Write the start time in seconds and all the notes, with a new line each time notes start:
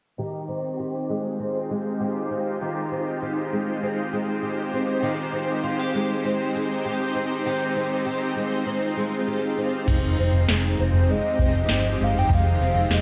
0.18 D#3 G#3 D#4 F4 G4 C5
0.48 C4
0.79 G4
1.09 G#3
1.40 C4
1.70 G#3
2.00 G4
2.31 C4
2.61 D#3 G4
2.92 C4
3.22 G4
3.52 G#3
3.83 C4
4.13 G#3
4.43 G4
4.73 C4
5.02 D#3 C4 D#4 G4
5.33 C4
5.63 F4
5.79 G4
5.94 G#3
6.25 C4
6.55 G#3
6.85 G4
7.15 C4
7.45 D#3 F4 G4
7.76 C4
8.06 G4
8.36 G#3
8.66 C4
8.97 G#3
9.27 G4
9.58 C4
9.87 F1 D#3 F3 G#3 C4 D#4 G4, kick, floor tom, crash
10.18 F1 C4
10.33 floor tom
10.49 F1 G#3, snare
10.79 F1 C4 C5
10.93 floor tom
11.09 G#3 D#5
11.39 F1 C4, kick
11.54 floor tom
11.69 G1 G4 D#5, snare
12.00 G1 G#3 F5
12.14 floor tom
12.18 G5
12.29 F1 D#3 F4, kick, floor tom
12.34 F5
12.60 F1 C4
12.75 floor tom
12.90 F1 G#3 D#5, snare